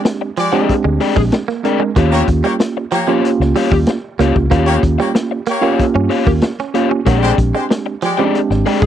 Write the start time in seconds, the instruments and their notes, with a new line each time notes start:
Already playing: tine electric piano G#3 C4 D4 G4
0.05 muted overdriven electric guitar stroke, muted clean electric guitar stroke, snare, closed hi-hat
0.21 muted overdriven electric guitar stroke
0.37 clean electric guitar F3, horn section G#3 G4 D5, closed hi-hat
0.52 clean electric guitar F3, tine electric piano G#3 C4 D4 G4, overdriven electric guitar G#4 D5 G5
0.69 kick, closed hi-hat
0.84 fingered electric bass D2, clean electric guitar G#3, muted overdriven electric guitar stroke
1.00 overdriven electric guitar G#4 D5 G5, muted clean electric guitar stroke, open hi-hat
1.16 fingered electric bass A#1, clean electric guitar G#3, muted overdriven electric guitar stroke, kick, snare
1.32 muted overdriven electric guitar stroke, snare, closed hi-hat
1.48 clean electric guitar A#3, snare
1.64 tine electric piano G#3 C4 D4 A#4, overdriven electric guitar G#4 D5 G5, muted clean electric guitar stroke, closed hi-hat
1.80 clean electric guitar G#3, muted overdriven electric guitar stroke
1.96 fingered electric bass D#2, clean electric guitar D#3, tine electric piano A#3 C#4 F4 G4, overdriven electric guitar G4 C#5 F5, kick, closed hi-hat
2.12 horn section A#3 G4 C#5, snare
2.28 fingered electric bass D#2, muted clean electric guitar stroke, kick, closed hi-hat
2.44 clean electric guitar G3, horn section A#3 G4 C#5, muted overdriven electric guitar stroke
2.60 muted clean electric guitar stroke, muted overdriven electric guitar stroke, snare, closed hi-hat
2.77 muted overdriven electric guitar stroke
2.92 clean electric guitar F3, horn section A#3 G4 C#5, snare, closed hi-hat
3.07 clean electric guitar F3, tine electric piano A#3 C#4 F4 G4, overdriven electric guitar G4 C#5 F5
3.23 muted clean electric guitar stroke, closed hi-hat
3.40 fingered electric bass C#2, muted overdriven electric guitar stroke, snare
3.56 clean electric guitar G3, overdriven electric guitar G4 C#5 F5, open hi-hat
3.72 fingered electric bass D#2, clean electric guitar G3, muted overdriven electric guitar stroke, kick, snare
3.87 muted overdriven electric guitar stroke, snare, closed hi-hat
4.19 fingered electric bass C#2, tine electric piano A#3 C#4 F4 G4, clean electric guitar A#3, overdriven electric guitar G4 C#5 F5, snare, closed hi-hat
4.36 fingered electric bass C#2, muted overdriven electric guitar stroke, kick
4.50 fingered electric bass D#2, tine electric piano A#3 C#4 F4 F#4, clean electric guitar A#3, overdriven electric guitar G4 C#5 F5, kick, closed hi-hat
4.58 tine electric piano G4
4.67 horn section A#3 G4 C#5
4.83 fingered electric bass D#2, muted clean electric guitar stroke, kick, closed hi-hat
4.98 clean electric guitar G3, horn section A#3 G4 C#5, muted overdriven electric guitar stroke, snare
5.15 muted overdriven electric guitar stroke, muted clean electric guitar stroke, snare, closed hi-hat
5.31 muted overdriven electric guitar stroke
5.46 clean electric guitar A#3, horn section A#3 G4 C#5, closed hi-hat
5.61 tine electric piano A#3 C#4 F4 G4, clean electric guitar A#3, overdriven electric guitar G4 C#5 F5
5.80 kick, closed hi-hat
5.95 fingered electric bass G2, clean electric guitar C#4, muted overdriven electric guitar stroke
6.10 overdriven electric guitar G4 C#5 F5, muted clean electric guitar stroke, open hi-hat
6.27 fingered electric bass D#2, clean electric guitar A#3, muted overdriven electric guitar stroke, kick, snare
6.41 muted overdriven electric guitar stroke, snare, closed hi-hat
6.58 clean electric guitar C#4, snare
6.74 tine electric piano A#3 C#4 F4 G4, overdriven electric guitar G4 C#5 F5, muted clean electric guitar stroke, closed hi-hat
6.91 clean electric guitar C#4, muted overdriven electric guitar stroke
7.06 fingered electric bass A#1, tine electric piano G#3 C4 D4 G4, clean electric guitar A#3, overdriven electric guitar G4 C#5 F#5, kick, closed hi-hat
7.18 overdriven electric guitar G#4 D5 G5
7.22 horn section G#3 G4 C5, snare
7.38 fingered electric bass A#1, muted clean electric guitar stroke, kick, closed hi-hat
7.55 clean electric guitar G#3, horn section G#3 G4 C5, muted overdriven electric guitar stroke
7.71 muted overdriven electric guitar stroke, muted clean electric guitar stroke, snare, closed hi-hat
7.86 muted overdriven electric guitar stroke
8.02 clean electric guitar F3, horn section G#3 G4 D5, snare, closed hi-hat
8.18 clean electric guitar F3, tine electric piano G#3 C4 C#4 G4, overdriven electric guitar G#4 D5 G5
8.25 tine electric piano D4
8.35 muted clean electric guitar stroke, closed hi-hat
8.50 fingered electric bass G#1, muted overdriven electric guitar stroke, snare
8.66 clean electric guitar G#3, overdriven electric guitar G#4 D5 G5, open hi-hat
8.82 fingered electric bass A#1, clean electric guitar G#3, muted overdriven electric guitar stroke, kick, snare